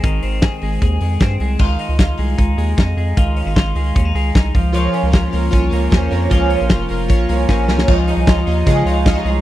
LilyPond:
<<
  \new Staff \with { instrumentName = "Synth keys" } { \time 4/4 \key des \lydian \tempo 4 = 153 r1 | r1 | r1 | <f' bes' des''>8 <f' bes' des''>8 <f' bes' des''>8 <f' bes' des''>8 <f' bes' des''>8 <f' bes' des''>8 <f' bes' c''>8 <f' bes' des''>8 |
<f' bes' des''>8 <f' bes' des''>8 <f' bes' des''>8 <f' bes' des''>8 <f' bes' des'' f''>8 <f' bes' des'' aes''>8 <f' bes' des'' bes''>8 <f' bes' des'' aes''>8 | <f' des'' ees''>8 <f' des'' ees''>8 <f' des'' ees''>8 <f' des'' ees''>8 <f' des'' ees''>8 <f' des'' ees''>8 <f' des'' ees''>8 <f' des'' ees''>8 | }
  \new Staff \with { instrumentName = "Clean electric guitar" } { \time 4/4 \key des \lydian <ees aes c' aes'>8 c'8 aes'8 aes8 aes'8 aes8 c'8 aes8 | <ees f'>8 ees'8 f'8 aes8 ees'8 aes8 ees'8 aes8 | <ees f'>8 des'16 ees'16 f'8 aes8 des'16 ees'16 aes8 ees'8 f8 | <f f'>8 des'8 f'8 bes8 des'8 bes8 des'8 bes8 |
<f f'>8 des'8 f'8 bes8 des'8 bes8 des'8 bes8 | f8 ees'8 f'8 ees'8 aes8 f'8 des'16 ees'16 aes8 | }
  \new Staff \with { instrumentName = "Twelve-string acoustic guitar" } { \clef bass \time 4/4 \key des \lydian r1 | r1 | r1 | <des f bes des'>8. <f bes des'>8 <f bes des'>4~ <f bes des'>16 <des f bes des'>8 <des f bes des'>8 <des f bes des'>8 |
<des f bes des'>8. <f bes des'>8 <f bes des'>4~ <f bes des'>16 <des f bes des'>8 <des f bes des'>8 <des f bes des'>8 | <des f aes ees'>8 <des f aes ees'>8. <f aes ees'>8. <des f aes ees'>8 <des f aes ees'>8. <des f aes ees'>8. | }
  \new Staff \with { instrumentName = "Analog synth bass" } { \clef bass \time 4/4 \key des \lydian aes,,8 aes,,8. r16 aes,,8 ees,8 f,8 g,8 c,8 | des,8 r16 des,8. c,8 des,8 ees,8 f,8 f,8 | des,8. aes,,16 aes,,8 des,8 ees,8 des,8 c,8 des,8~ | des,8 r16 des,8. des,8 c,8 des,8 ees,8 f,8 |
des,8. bes,,16 f,,8 f,,8 bes,,8 c,8 bes,,8 c,8 | des,8. c,16 des,8 ees,8 des8 des,4 c,8 | }
  \new DrumStaff \with { instrumentName = "Drums" } \drummode { \time 4/4 <hh bd>8 hho8 <hh bd sn>8 hho8 <hh bd>8 hho8 <hh bd sn>8 hho8 | <cymc bd>8 hho8 <hh bd sn>8 hho8 <hh bd>8 hho8 <hh bd sn>8 hho8 | <hh bd>8 hho8 <hh bd sn>8 hho8 <hh bd>8 hho8 <hh bd sn>8 <hho bd>8 | hh8 hho8 <hh bd sn>8 hho8 <hh bd>8 hho8 <hh bd sn>8 hho8 |
<hh bd>8 hho8 <hh bd sn>8 hho8 <hh bd>8 hho8 <bd sn>8 sn16 sn16 | <cymc bd>8 hho8 <hh bd sn>8 hho8 <hh bd>8 hho8 <hh bd sn>8 hho8 | }
>>